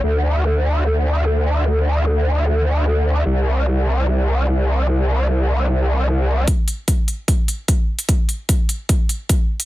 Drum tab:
HH |----------------|----------------|----------------|----------------|
BD |----------------|----------------|----------------|----------------|

HH |x-x-x-x-x-x-x--x|x-x-x-x-x-x-x--x|
BD |o---o---o---o---|o---o---o---o---|